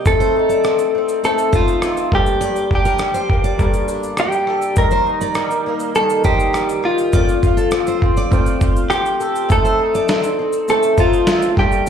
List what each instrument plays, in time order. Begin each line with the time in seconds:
Already playing: twelve-string acoustic guitar C3 A#3 D#4
0.05 upright piano A3 C4 D#4 C5, twelve-string acoustic guitar A3, clean electric guitar A4, kick, shaker
0.20 steel-string acoustic guitar C5, shaker
0.36 twelve-string acoustic guitar D#4
0.49 steel-string acoustic guitar D5, shaker
0.64 twelve-string acoustic guitar C4, cross-stick, shaker
0.79 shaker
0.95 twelve-string acoustic guitar C4
1.09 shaker
1.23 upright piano A3 C4 D#4 C5, twelve-string acoustic guitar A3, clean electric guitar A4, shaker
1.38 shaker
1.52 twelve-string acoustic guitar D#4, clean electric guitar F4, steel-string acoustic guitar C5, kick, shaker
1.68 shaker
1.82 twelve-string acoustic guitar C4, cross-stick, shaker
1.97 shaker
2.11 twelve-string acoustic guitar G2, upright piano G3 A#3 D4 A4, clean electric guitar G4, kick, cross-stick
2.26 shaker
2.41 twelve-string acoustic guitar G2, steel-string acoustic guitar D5, shaker
2.56 shaker
2.71 twelve-string acoustic guitar D4, kick
2.75 clean electric guitar G4
2.85 steel-string acoustic guitar A#4, shaker
2.99 twelve-string acoustic guitar G3, cross-stick, shaker
3.14 steel-string acoustic guitar C5, shaker
3.30 twelve-string acoustic guitar A#3, kick
3.44 steel-string acoustic guitar D5, shaker
3.58 twelve-string acoustic guitar G2, upright piano G3 A#3 D4 A4, kick, shaker
3.74 shaker
3.88 twelve-string acoustic guitar D4, shaker
4.03 shaker
4.17 twelve-string acoustic guitar G3, clean electric guitar G4, cross-stick, shaker
4.32 shaker
4.47 twelve-string acoustic guitar A4, cross-stick
4.62 shaker
4.75 twelve-string acoustic guitar D#3, upright piano G3 A#3 D#4 A4, clean electric guitar A#4, kick, shaker
4.84 upright piano A#4
4.91 steel-string acoustic guitar C5, shaker
5.07 twelve-string acoustic guitar D#4
5.21 steel-string acoustic guitar D5, shaker
5.35 twelve-string acoustic guitar G3, cross-stick, shaker
5.50 shaker
5.66 twelve-string acoustic guitar A#3
5.79 shaker
5.95 twelve-string acoustic guitar D#3, upright piano G3 A#3 D#4 A#4, clean electric guitar A4, shaker
6.10 shaker
6.24 twelve-string acoustic guitar D#4, clean electric guitar G4, steel-string acoustic guitar C5, kick, shaker
6.40 shaker
6.53 twelve-string acoustic guitar G3, cross-stick, shaker
6.69 shaker
6.82 clean electric guitar F4, twelve-string acoustic guitar G4, cross-stick
6.98 shaker
7.12 twelve-string acoustic guitar F3, upright piano A3 C4 F4 C5, steel-string acoustic guitar D5, kick, shaker
7.28 shaker
7.43 twelve-string acoustic guitar F4, kick, shaker
7.57 steel-string acoustic guitar A4, shaker
7.71 twelve-string acoustic guitar C4, cross-stick, shaker
7.87 steel-string acoustic guitar C5, shaker
8.02 twelve-string acoustic guitar C4, kick
8.17 steel-string acoustic guitar D5, shaker
8.31 twelve-string acoustic guitar F3, upright piano A3 C4 F4 C5, kick, shaker
8.46 shaker
8.61 twelve-string acoustic guitar F4, kick, shaker
8.76 shaker
8.90 twelve-string acoustic guitar C4, clean electric guitar G4, cross-stick, shaker
9.06 shaker
9.20 twelve-string acoustic guitar A4, shaker
9.35 shaker
9.49 twelve-string acoustic guitar A3, upright piano A3 C4 D#4 C5, clean electric guitar A4, kick, shaker
9.65 steel-string acoustic guitar C5, shaker
9.79 twelve-string acoustic guitar D#4
9.95 steel-string acoustic guitar D5, shaker
10.08 twelve-string acoustic guitar C4, snare, shaker
10.23 shaker
10.39 twelve-string acoustic guitar C4
10.53 shaker
10.68 upright piano A3 C4 D#4 C5, twelve-string acoustic guitar A3, clean electric guitar A4, shaker
10.83 shaker
10.98 twelve-string acoustic guitar D#4, clean electric guitar F4, steel-string acoustic guitar C5, kick, shaker
11.13 shaker
11.27 twelve-string acoustic guitar C4, snare, shaker
11.42 shaker
11.56 twelve-string acoustic guitar G2, upright piano G3 A3 D4 A4, clean electric guitar G4, kick, snare
11.63 upright piano A#3
11.72 shaker